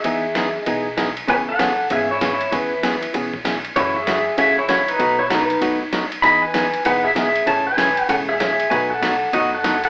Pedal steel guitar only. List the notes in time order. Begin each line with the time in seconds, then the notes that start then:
Already playing: G#4 E5
0.60 D#5
1.29 B4 G#5
1.48 A4 F#5
1.92 G#4 E5
2.11 E4 C#5
2.23 E4 C#5
2.55 E4 B4
3.76 E4 C#5
3.96 G#4 E5
4.39 G#4 E5
4.58 E4 C#5
4.69 E4 C#5
4.88 D#4 B4
5.19 E4 C#5
5.31 D#4 B4
6.22 D#5 B5
6.42 B4 G#5
6.86 B4 F#5
7.04 G#4 E5
7.16 G#4 E5
7.48 C#5 A5
7.67 B4 G#5
8.09 A4 F#5
8.29 G#4 E5
8.40 G#4 E5
8.70 B4 G#5
8.90 A4 F#5
9.33 F#4 D#5
9.54 A4 F#5
9.85 A4 F#5